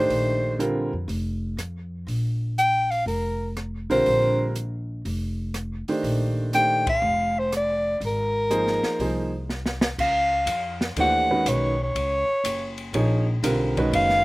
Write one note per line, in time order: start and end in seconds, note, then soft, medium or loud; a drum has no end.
0.00 0.57 D#3 medium
0.00 0.57 A3 medium
0.00 0.57 D4 medium
0.00 0.57 G4 medium
0.00 0.57 C5 loud
0.00 0.57 C5 medium
0.09 0.89 A#1 medium
0.09 open hi-hat soft
0.59 0.90 D3 medium
0.59 0.90 G3 medium
0.59 0.90 C4 medium
0.59 0.90 F4 medium
0.59 0.90 A#4 medium
0.59 closed hi-hat soft
0.93 1.07 F2 medium
1.08 1.55 F1 medium
1.08 open hi-hat soft
1.57 2.04 F2 medium
1.57 cross-stick medium
1.57 closed hi-hat medium
2.07 3.02 A#1 medium
2.07 open hi-hat soft
2.58 2.92 G5 loud
2.58 closed hi-hat medium
2.91 3.07 F5 loud
2.91 open hi-hat soft
3.06 3.85 F1 medium
3.06 3.53 A#4 medium
3.06 open hi-hat soft
3.57 cross-stick medium
3.57 closed hi-hat soft
3.90 4.04 B1 medium
3.90 4.52 D3 medium
3.90 4.52 G3 medium
3.90 4.52 C4 medium
3.90 4.52 F4 medium
3.90 4.52 A#4 medium
3.90 4.52 C5 loud
3.90 open hi-hat soft
4.06 5.01 A#1 medium
4.06 open hi-hat soft
4.55 closed hi-hat medium
5.05 5.84 F1 medium
5.05 open hi-hat soft
5.54 cross-stick medium
5.54 closed hi-hat medium
5.88 6.50 D#3 medium
5.88 6.50 A3 medium
5.88 6.50 D4 medium
5.88 6.50 G4 medium
5.88 6.50 C5 medium
5.88 muted upright bass stroke soft
5.88 open hi-hat soft
6.03 6.98 A#1 medium
6.03 open hi-hat soft
6.53 6.83 D#3 medium
6.53 6.83 A3 medium
6.53 6.83 D4 medium
6.53 6.83 G4 medium
6.53 6.83 C5 medium
6.53 6.85 G5 medium
6.53 closed hi-hat medium
6.87 7.40 F5 loud
6.87 kick medium
6.87 ride medium
7.02 7.96 F1 medium
7.39 7.53 C5 medium
7.52 cross-stick medium
7.52 closed hi-hat medium
7.57 8.00 D5 medium
8.00 8.79 G#1 medium
8.00 open hi-hat soft
8.06 9.47 A#4 medium
8.50 8.98 F3 medium
8.50 8.98 A#3 medium
8.50 8.98 D#4 medium
8.50 8.98 G#4 medium
8.50 8.98 C5 medium
8.50 closed hi-hat medium
8.67 snare soft
8.83 muted upright bass stroke soft
8.83 snare soft
8.99 9.94 C2 medium
8.99 9.30 F3 medium
8.99 9.30 A#3 soft
8.99 9.30 D#4 medium
8.99 9.30 G#4 medium
8.99 9.30 C5 medium
8.99 open hi-hat soft
9.49 snare soft
9.66 snare medium
9.81 snare medium
9.98 10.45 C#2 medium
9.98 10.78 F5 loud
9.98 kick medium
9.98 crash medium
10.46 10.94 F2 medium
10.46 hi-hat pedal medium
10.46 ride medium
10.81 snare medium
10.96 11.44 D#2 medium
10.96 11.27 E3 medium
10.96 11.27 A3 medium
10.96 11.27 D4 medium
10.96 11.27 G4 medium
10.96 11.27 C5 medium
10.96 ride medium
11.00 11.50 F#5 loud
11.30 11.73 D#3 medium
11.30 11.73 G#3 medium
11.30 11.73 C#4 medium
11.30 11.73 F#4 medium
11.30 11.73 B4 medium
11.46 11.93 B1 medium
11.46 11.81 C#5 medium
11.46 hi-hat pedal medium
11.46 ride medium
11.84 12.76 C#5 medium
11.95 12.26 C#2 medium
11.95 ride medium
12.44 12.92 F#1 medium
12.44 hi-hat pedal medium
12.44 ride medium
12.78 ride soft
12.93 13.41 A#1 medium
12.93 13.24 F3 medium
12.93 13.24 A#3 medium
12.93 13.25 D#4 medium
12.93 13.25 G#4 medium
12.93 13.25 C#5 medium
12.93 ride medium
13.43 13.91 B1 medium
13.43 13.73 D3 medium
13.43 13.74 G3 medium
13.43 13.74 C4 medium
13.43 13.73 F4 medium
13.43 13.74 A#4 medium
13.43 hi-hat pedal medium
13.43 ride medium
13.77 14.20 D#3 medium
13.77 14.20 G#3 medium
13.77 14.20 C#4 medium
13.77 14.20 F#4 medium
13.77 14.20 B4 medium
13.77 kick medium
13.77 ride soft
13.91 14.24 F#1 medium
13.91 14.24 F5 loud
13.91 ride medium
14.09 snare soft